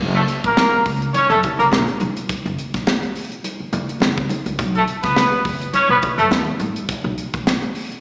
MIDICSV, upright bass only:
0, 0, Header, 1, 3, 480
1, 0, Start_track
1, 0, Tempo, 575264
1, 1910, Time_signature, 4, 2, 24, 8
1, 6678, End_track
2, 0, Start_track
2, 0, Title_t, "Upright bass"
2, 0, Program_c, 0, 32
2, 0, Note_on_c, 0, 30, 113
2, 168, Note_off_c, 0, 30, 0
2, 369, Note_on_c, 0, 34, 97
2, 445, Note_off_c, 0, 34, 0
2, 713, Note_on_c, 0, 37, 81
2, 890, Note_off_c, 0, 37, 0
2, 1082, Note_on_c, 0, 42, 96
2, 1161, Note_off_c, 0, 42, 0
2, 1326, Note_on_c, 0, 37, 85
2, 1404, Note_off_c, 0, 37, 0
2, 1430, Note_on_c, 0, 34, 101
2, 1530, Note_off_c, 0, 34, 0
2, 1676, Note_on_c, 0, 28, 91
2, 1774, Note_off_c, 0, 28, 0
2, 2048, Note_on_c, 0, 30, 97
2, 2126, Note_off_c, 0, 30, 0
2, 2288, Note_on_c, 0, 28, 83
2, 2365, Note_off_c, 0, 28, 0
2, 3112, Note_on_c, 0, 28, 90
2, 3212, Note_off_c, 0, 28, 0
2, 3348, Note_on_c, 0, 30, 95
2, 3528, Note_off_c, 0, 30, 0
2, 3721, Note_on_c, 0, 37, 82
2, 3801, Note_off_c, 0, 37, 0
2, 3828, Note_on_c, 0, 35, 111
2, 4007, Note_off_c, 0, 35, 0
2, 4204, Note_on_c, 0, 37, 90
2, 4283, Note_off_c, 0, 37, 0
2, 4549, Note_on_c, 0, 30, 77
2, 4728, Note_off_c, 0, 30, 0
2, 4916, Note_on_c, 0, 47, 87
2, 4998, Note_off_c, 0, 47, 0
2, 5154, Note_on_c, 0, 42, 84
2, 5236, Note_off_c, 0, 42, 0
2, 5264, Note_on_c, 0, 39, 104
2, 5366, Note_off_c, 0, 39, 0
2, 5504, Note_on_c, 0, 33, 98
2, 5606, Note_off_c, 0, 33, 0
2, 5876, Note_on_c, 0, 35, 104
2, 5958, Note_off_c, 0, 35, 0
2, 6124, Note_on_c, 0, 35, 100
2, 6203, Note_off_c, 0, 35, 0
2, 6678, End_track
3, 0, Start_track
3, 0, Title_t, "Muted upright bass strokes"
3, 606, Note_on_c, 9, 29, 43
3, 690, Note_off_c, 9, 29, 0
3, 949, Note_on_c, 9, 29, 43
3, 1032, Note_off_c, 9, 29, 0
3, 3005, Note_on_c, 9, 29, 51
3, 3089, Note_off_c, 9, 29, 0
3, 4435, Note_on_c, 9, 29, 44
3, 4519, Note_off_c, 9, 29, 0
3, 4781, Note_on_c, 9, 29, 43
3, 4865, Note_off_c, 9, 29, 0
3, 6678, End_track
0, 0, End_of_file